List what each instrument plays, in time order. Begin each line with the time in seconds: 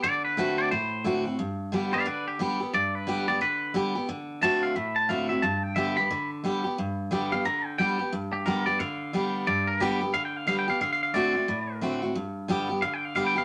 0.03 steel-string acoustic guitar D3, clean electric guitar D5
0.25 clean electric guitar B4
0.37 steel-string acoustic guitar D3 A3 C4 F#4
0.58 clean electric guitar D5
0.71 steel-string acoustic guitar A2, clean electric guitar C5
1.04 steel-string acoustic guitar D3 A3 C4 F#4
1.25 steel-string acoustic guitar C4 F#4
1.39 steel-string acoustic guitar G2
1.72 steel-string acoustic guitar D3 G3 B3 G4
1.92 steel-string acoustic guitar B3 G4, clean electric guitar D5 F5
2.06 steel-string acoustic guitar D3, clean electric guitar B4 D5
2.28 clean electric guitar G4
2.39 steel-string acoustic guitar D3 G3 B3 G4
2.60 steel-string acoustic guitar B3 G4
2.73 steel-string acoustic guitar G2, clean electric guitar D5
2.95 clean electric guitar B4
3.07 steel-string acoustic guitar D3 G3 B3 G4
3.28 steel-string acoustic guitar B3 G4, clean electric guitar D5
3.41 steel-string acoustic guitar D3, clean electric guitar B4
3.74 steel-string acoustic guitar D3 G3 B3 G4
3.95 steel-string acoustic guitar B3 G4
4.09 steel-string acoustic guitar D3
4.42 steel-string acoustic guitar D3 A3 C4 F#4, clean electric guitar A5
4.63 clean electric guitar F5
4.76 steel-string acoustic guitar A2, clean electric guitar E5
4.96 clean electric guitar A5
5.09 steel-string acoustic guitar D3 A3 C4 F#4, clean electric guitar F5
5.29 steel-string acoustic guitar C4 F#4, clean electric guitar E5
5.42 steel-string acoustic guitar G2, clean electric guitar A5
5.63 clean electric guitar G5
5.76 steel-string acoustic guitar D3 G3 B3 G4, clean electric guitar E5
5.97 steel-string acoustic guitar B3 G4, clean electric guitar B5
6.11 steel-string acoustic guitar D3
6.44 steel-string acoustic guitar D3 G3 B3 G4
6.64 steel-string acoustic guitar B3 G4
6.78 steel-string acoustic guitar G2
7.11 steel-string acoustic guitar D3 G3 B3 G4
7.32 steel-string acoustic guitar B3 G4, clean electric guitar F5
7.45 steel-string acoustic guitar D3, clean electric guitar A#5
7.66 clean electric guitar G5
7.78 steel-string acoustic guitar D3 G3 B3 G4, clean electric guitar G5
7.99 steel-string acoustic guitar B3 G4
8.13 steel-string acoustic guitar G2
8.33 clean electric guitar G4
8.46 steel-string acoustic guitar D3 G3 B3 G4, clean electric guitar A#4
8.66 steel-string acoustic guitar B3 G4, clean electric guitar D5
8.79 steel-string acoustic guitar D3, clean electric guitar F5
9.13 steel-string acoustic guitar D3 G3 B3 G4
9.47 steel-string acoustic guitar G2, clean electric guitar D5
9.67 clean electric guitar A#4
9.80 steel-string acoustic guitar D3 G3 B3 G4, clean electric guitar G4
10.01 steel-string acoustic guitar B3 G4
10.14 steel-string acoustic guitar D3, clean electric guitar F5
10.25 clean electric guitar G5
10.37 clean electric guitar F5
10.47 steel-string acoustic guitar D3 G3 B3 G4, clean electric guitar F5
10.59 clean electric guitar G5
10.68 steel-string acoustic guitar B3 G4, clean electric guitar F5
10.81 steel-string acoustic guitar D3, clean electric guitar F5
10.93 clean electric guitar F5
11.03 clean electric guitar F5
11.14 steel-string acoustic guitar D3 A3 C4 F#4, clean electric guitar D5
11.35 steel-string acoustic guitar C4 F#4
11.48 steel-string acoustic guitar A2
11.81 steel-string acoustic guitar D3 A3 C4 F#4
12.02 steel-string acoustic guitar C4 F#4
12.15 steel-string acoustic guitar G2
12.48 steel-string acoustic guitar D3 G3 B3 G4
12.69 steel-string acoustic guitar B3 G4
12.82 steel-string acoustic guitar D3, clean electric guitar F5
12.94 clean electric guitar G5
13.05 clean electric guitar F5
13.15 steel-string acoustic guitar D3 G3 B3 G4, clean electric guitar F5
13.27 clean electric guitar G5
13.36 steel-string acoustic guitar B3 G4, clean electric guitar F5